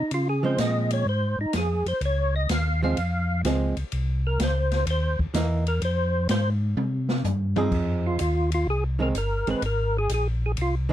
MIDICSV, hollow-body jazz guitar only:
0, 0, Header, 1, 2, 480
1, 0, Start_track
1, 0, Key_signature, -4, "minor"
1, 0, Tempo, 475813
1, 108, Time_signature, 4, 2, 24, 8
1, 11025, End_track
2, 0, Start_track
2, 0, Title_t, "Hollow-body jazz guitar"
2, 0, Program_c, 0, 26
2, 435, Note_on_c, 0, 53, 60
2, 443, Note_on_c, 0, 56, 65
2, 449, Note_on_c, 0, 60, 68
2, 1038, Note_off_c, 0, 53, 0
2, 1042, Note_off_c, 0, 56, 0
2, 1046, Note_off_c, 0, 60, 0
2, 2851, Note_on_c, 0, 53, 57
2, 2859, Note_on_c, 0, 56, 67
2, 2865, Note_on_c, 0, 60, 72
2, 2982, Note_off_c, 0, 53, 0
2, 2986, Note_off_c, 0, 56, 0
2, 2989, Note_off_c, 0, 60, 0
2, 3481, Note_on_c, 0, 53, 54
2, 3490, Note_on_c, 0, 56, 70
2, 3491, Note_on_c, 0, 60, 70
2, 3769, Note_off_c, 0, 53, 0
2, 3773, Note_off_c, 0, 56, 0
2, 3774, Note_off_c, 0, 60, 0
2, 5386, Note_on_c, 0, 52, 60
2, 5396, Note_on_c, 0, 63, 64
2, 5398, Note_on_c, 0, 58, 66
2, 5680, Note_off_c, 0, 52, 0
2, 5686, Note_off_c, 0, 63, 0
2, 5687, Note_off_c, 0, 58, 0
2, 7631, Note_on_c, 0, 53, 73
2, 7637, Note_on_c, 0, 63, 74
2, 7638, Note_on_c, 0, 60, 66
2, 7642, Note_on_c, 0, 68, 86
2, 8235, Note_off_c, 0, 53, 0
2, 8238, Note_off_c, 0, 60, 0
2, 8238, Note_off_c, 0, 63, 0
2, 8240, Note_off_c, 0, 68, 0
2, 9069, Note_on_c, 0, 51, 60
2, 9078, Note_on_c, 0, 56, 60
2, 9083, Note_on_c, 0, 60, 68
2, 9209, Note_off_c, 0, 51, 0
2, 9214, Note_off_c, 0, 56, 0
2, 9216, Note_off_c, 0, 60, 0
2, 9559, Note_on_c, 0, 51, 53
2, 9560, Note_on_c, 0, 56, 53
2, 9565, Note_on_c, 0, 60, 62
2, 9694, Note_off_c, 0, 51, 0
2, 9694, Note_off_c, 0, 56, 0
2, 9697, Note_off_c, 0, 60, 0
2, 10988, Note_on_c, 0, 51, 73
2, 11025, Note_off_c, 0, 51, 0
2, 11025, End_track
0, 0, End_of_file